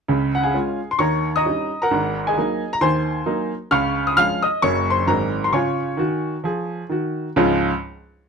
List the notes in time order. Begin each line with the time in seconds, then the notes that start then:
0.08 C#2 C#3
0.35 F#5
0.43 G#4 F5 G#5
0.54 G#3 C#4 F4
0.91 C6
0.99 D#2 D#3 C#5 A#5 C#6
1.36 D#5 A#5 D#6
1.46 G3 C#4 D#4
1.82 A#4 F#5 A#5
1.91 G#1 G#2
2.27 G#4 D#5 G#5
2.38 F#3 A#3 D#4
2.73 A#5
2.81 D#2 D#3 C5 G#5 C6
3.26 F#3 A#3 D#4
3.71 C#2 C#3 F5 C#6 F6
4.07 D#6
4.17 F3 G#3 C#4 F5 F6
4.42 D#5 D#6
4.62 F#1 F#2 F#3 A#3 C#4 C#5 C#6
4.90 C5 C6
5.07 G#1 G#2 F#3 G#3 C4 A#4 A#5
5.44 C6
5.52 C#3 F4 C#5 G#5 C#6
5.97 D#3 F#4
6.44 F3 G#4
6.89 D#3 F#4
7.36 C#2 G#2 F3 G#3 C#4 F4